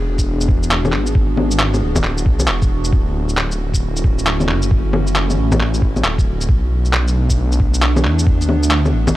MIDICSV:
0, 0, Header, 1, 4, 480
1, 0, Start_track
1, 0, Tempo, 444444
1, 1248, Time_signature, 4, 2, 24, 8
1, 9897, End_track
2, 0, Start_track
2, 0, Title_t, "Ambient pad"
2, 0, Program_c, 0, 92
2, 0, Note_on_c, 0, 52, 81
2, 0, Note_on_c, 0, 59, 71
2, 0, Note_on_c, 0, 62, 72
2, 0, Note_on_c, 0, 66, 72
2, 0, Note_on_c, 0, 68, 75
2, 3129, Note_off_c, 0, 68, 0
2, 3133, Note_off_c, 0, 52, 0
2, 3136, Note_off_c, 0, 62, 0
2, 3137, Note_off_c, 0, 59, 0
2, 3157, Note_on_c, 0, 50, 77
2, 3157, Note_on_c, 0, 61, 71
2, 3158, Note_on_c, 0, 64, 72
2, 3159, Note_on_c, 0, 57, 70
2, 6964, Note_off_c, 0, 50, 0
2, 6965, Note_off_c, 0, 57, 0
2, 6965, Note_off_c, 0, 61, 0
2, 6965, Note_off_c, 0, 64, 0
2, 6973, Note_off_c, 0, 66, 0
2, 7005, Note_on_c, 0, 57, 82
2, 7006, Note_on_c, 0, 59, 70
2, 7007, Note_on_c, 0, 62, 87
2, 9897, Note_off_c, 0, 57, 0
2, 9897, Note_off_c, 0, 59, 0
2, 9897, Note_off_c, 0, 62, 0
2, 9897, End_track
3, 0, Start_track
3, 0, Title_t, "Detuned saw bass"
3, 0, Program_c, 1, 39
3, 0, Note_on_c, 1, 28, 107
3, 1006, Note_on_c, 1, 32, 89
3, 1022, Note_off_c, 1, 28, 0
3, 1380, Note_off_c, 1, 32, 0
3, 1397, Note_on_c, 1, 32, 85
3, 1956, Note_off_c, 1, 32, 0
3, 1972, Note_on_c, 1, 26, 80
3, 2434, Note_off_c, 1, 26, 0
3, 2441, Note_on_c, 1, 35, 81
3, 2671, Note_off_c, 1, 35, 0
3, 2688, Note_on_c, 1, 28, 90
3, 3154, Note_off_c, 1, 28, 0
3, 3161, Note_on_c, 1, 26, 102
3, 4845, Note_on_c, 1, 30, 90
3, 4861, Note_off_c, 1, 26, 0
3, 5220, Note_off_c, 1, 30, 0
3, 5241, Note_on_c, 1, 30, 85
3, 5797, Note_off_c, 1, 30, 0
3, 5808, Note_on_c, 1, 33, 78
3, 6279, Note_off_c, 1, 33, 0
3, 6285, Note_on_c, 1, 33, 88
3, 6513, Note_off_c, 1, 33, 0
3, 6527, Note_on_c, 1, 26, 89
3, 6997, Note_off_c, 1, 26, 0
3, 7007, Note_on_c, 1, 35, 100
3, 8693, Note_on_c, 1, 40, 89
3, 8709, Note_off_c, 1, 35, 0
3, 9084, Note_on_c, 1, 38, 84
3, 9100, Note_off_c, 1, 40, 0
3, 9639, Note_off_c, 1, 38, 0
3, 9650, Note_on_c, 1, 33, 80
3, 9897, Note_off_c, 1, 33, 0
3, 9897, End_track
4, 0, Start_track
4, 0, Title_t, "Drums"
4, 198, Note_on_c, 9, 36, 62
4, 200, Note_on_c, 9, 82, 60
4, 306, Note_off_c, 9, 36, 0
4, 308, Note_off_c, 9, 82, 0
4, 438, Note_on_c, 9, 82, 49
4, 524, Note_on_c, 9, 36, 110
4, 546, Note_off_c, 9, 82, 0
4, 632, Note_off_c, 9, 36, 0
4, 681, Note_on_c, 9, 82, 56
4, 768, Note_on_c, 9, 39, 104
4, 789, Note_off_c, 9, 82, 0
4, 876, Note_off_c, 9, 39, 0
4, 917, Note_on_c, 9, 61, 51
4, 917, Note_on_c, 9, 82, 31
4, 996, Note_on_c, 9, 39, 64
4, 1025, Note_off_c, 9, 61, 0
4, 1025, Note_off_c, 9, 82, 0
4, 1104, Note_off_c, 9, 39, 0
4, 1150, Note_on_c, 9, 82, 60
4, 1243, Note_on_c, 9, 36, 127
4, 1258, Note_off_c, 9, 82, 0
4, 1351, Note_off_c, 9, 36, 0
4, 1484, Note_on_c, 9, 61, 49
4, 1592, Note_off_c, 9, 61, 0
4, 1631, Note_on_c, 9, 82, 57
4, 1721, Note_on_c, 9, 39, 111
4, 1739, Note_off_c, 9, 82, 0
4, 1829, Note_off_c, 9, 39, 0
4, 1878, Note_on_c, 9, 61, 33
4, 1878, Note_on_c, 9, 82, 42
4, 1986, Note_off_c, 9, 61, 0
4, 1986, Note_off_c, 9, 82, 0
4, 2112, Note_on_c, 9, 36, 65
4, 2113, Note_on_c, 9, 61, 64
4, 2113, Note_on_c, 9, 82, 55
4, 2199, Note_on_c, 9, 39, 65
4, 2220, Note_off_c, 9, 36, 0
4, 2221, Note_off_c, 9, 61, 0
4, 2221, Note_off_c, 9, 82, 0
4, 2307, Note_off_c, 9, 39, 0
4, 2349, Note_on_c, 9, 82, 44
4, 2440, Note_on_c, 9, 36, 106
4, 2457, Note_off_c, 9, 82, 0
4, 2548, Note_off_c, 9, 36, 0
4, 2585, Note_on_c, 9, 61, 35
4, 2585, Note_on_c, 9, 82, 57
4, 2673, Note_on_c, 9, 39, 102
4, 2693, Note_off_c, 9, 61, 0
4, 2693, Note_off_c, 9, 82, 0
4, 2781, Note_off_c, 9, 39, 0
4, 2828, Note_on_c, 9, 82, 31
4, 2831, Note_on_c, 9, 36, 109
4, 2936, Note_off_c, 9, 82, 0
4, 2939, Note_off_c, 9, 36, 0
4, 3070, Note_on_c, 9, 82, 54
4, 3160, Note_on_c, 9, 36, 121
4, 3178, Note_off_c, 9, 82, 0
4, 3268, Note_off_c, 9, 36, 0
4, 3553, Note_on_c, 9, 82, 54
4, 3641, Note_on_c, 9, 39, 103
4, 3661, Note_off_c, 9, 82, 0
4, 3749, Note_off_c, 9, 39, 0
4, 3795, Note_on_c, 9, 82, 41
4, 3903, Note_off_c, 9, 82, 0
4, 4035, Note_on_c, 9, 36, 59
4, 4040, Note_on_c, 9, 82, 55
4, 4143, Note_off_c, 9, 36, 0
4, 4148, Note_off_c, 9, 82, 0
4, 4281, Note_on_c, 9, 82, 44
4, 4365, Note_on_c, 9, 36, 104
4, 4389, Note_off_c, 9, 82, 0
4, 4473, Note_off_c, 9, 36, 0
4, 4521, Note_on_c, 9, 82, 51
4, 4607, Note_on_c, 9, 39, 103
4, 4629, Note_off_c, 9, 82, 0
4, 4715, Note_off_c, 9, 39, 0
4, 4755, Note_on_c, 9, 61, 50
4, 4755, Note_on_c, 9, 82, 29
4, 4843, Note_on_c, 9, 39, 61
4, 4863, Note_off_c, 9, 61, 0
4, 4863, Note_off_c, 9, 82, 0
4, 4951, Note_off_c, 9, 39, 0
4, 4992, Note_on_c, 9, 82, 54
4, 5088, Note_on_c, 9, 36, 121
4, 5100, Note_off_c, 9, 82, 0
4, 5196, Note_off_c, 9, 36, 0
4, 5326, Note_on_c, 9, 61, 52
4, 5434, Note_off_c, 9, 61, 0
4, 5476, Note_on_c, 9, 82, 54
4, 5568, Note_on_c, 9, 39, 100
4, 5584, Note_off_c, 9, 82, 0
4, 5676, Note_off_c, 9, 39, 0
4, 5723, Note_on_c, 9, 61, 35
4, 5723, Note_on_c, 9, 82, 39
4, 5831, Note_off_c, 9, 61, 0
4, 5831, Note_off_c, 9, 82, 0
4, 5958, Note_on_c, 9, 36, 59
4, 5960, Note_on_c, 9, 61, 70
4, 5960, Note_on_c, 9, 82, 57
4, 6050, Note_on_c, 9, 39, 60
4, 6066, Note_off_c, 9, 36, 0
4, 6068, Note_off_c, 9, 61, 0
4, 6068, Note_off_c, 9, 82, 0
4, 6158, Note_off_c, 9, 39, 0
4, 6199, Note_on_c, 9, 82, 43
4, 6285, Note_on_c, 9, 36, 101
4, 6307, Note_off_c, 9, 82, 0
4, 6393, Note_off_c, 9, 36, 0
4, 6440, Note_on_c, 9, 61, 37
4, 6440, Note_on_c, 9, 82, 53
4, 6526, Note_on_c, 9, 39, 100
4, 6548, Note_off_c, 9, 61, 0
4, 6548, Note_off_c, 9, 82, 0
4, 6634, Note_off_c, 9, 39, 0
4, 6678, Note_on_c, 9, 36, 102
4, 6682, Note_on_c, 9, 82, 31
4, 6786, Note_off_c, 9, 36, 0
4, 6790, Note_off_c, 9, 82, 0
4, 6921, Note_on_c, 9, 82, 56
4, 7007, Note_on_c, 9, 36, 113
4, 7029, Note_off_c, 9, 82, 0
4, 7115, Note_off_c, 9, 36, 0
4, 7400, Note_on_c, 9, 82, 56
4, 7486, Note_on_c, 9, 39, 104
4, 7508, Note_off_c, 9, 82, 0
4, 7594, Note_off_c, 9, 39, 0
4, 7643, Note_on_c, 9, 82, 43
4, 7751, Note_off_c, 9, 82, 0
4, 7879, Note_on_c, 9, 36, 56
4, 7882, Note_on_c, 9, 82, 60
4, 7987, Note_off_c, 9, 36, 0
4, 7990, Note_off_c, 9, 82, 0
4, 8122, Note_on_c, 9, 82, 48
4, 8206, Note_on_c, 9, 36, 99
4, 8230, Note_off_c, 9, 82, 0
4, 8314, Note_off_c, 9, 36, 0
4, 8359, Note_on_c, 9, 82, 55
4, 8448, Note_on_c, 9, 39, 100
4, 8467, Note_off_c, 9, 82, 0
4, 8556, Note_off_c, 9, 39, 0
4, 8601, Note_on_c, 9, 61, 56
4, 8601, Note_on_c, 9, 82, 31
4, 8687, Note_on_c, 9, 39, 58
4, 8709, Note_off_c, 9, 61, 0
4, 8709, Note_off_c, 9, 82, 0
4, 8795, Note_off_c, 9, 39, 0
4, 8843, Note_on_c, 9, 82, 54
4, 8928, Note_on_c, 9, 36, 117
4, 8951, Note_off_c, 9, 82, 0
4, 9036, Note_off_c, 9, 36, 0
4, 9085, Note_on_c, 9, 82, 32
4, 9166, Note_on_c, 9, 61, 52
4, 9193, Note_off_c, 9, 82, 0
4, 9274, Note_off_c, 9, 61, 0
4, 9319, Note_on_c, 9, 82, 58
4, 9403, Note_on_c, 9, 39, 107
4, 9427, Note_off_c, 9, 82, 0
4, 9511, Note_off_c, 9, 39, 0
4, 9562, Note_on_c, 9, 61, 36
4, 9562, Note_on_c, 9, 82, 43
4, 9670, Note_off_c, 9, 61, 0
4, 9670, Note_off_c, 9, 82, 0
4, 9797, Note_on_c, 9, 36, 60
4, 9799, Note_on_c, 9, 61, 72
4, 9799, Note_on_c, 9, 82, 60
4, 9897, Note_off_c, 9, 36, 0
4, 9897, Note_off_c, 9, 61, 0
4, 9897, Note_off_c, 9, 82, 0
4, 9897, End_track
0, 0, End_of_file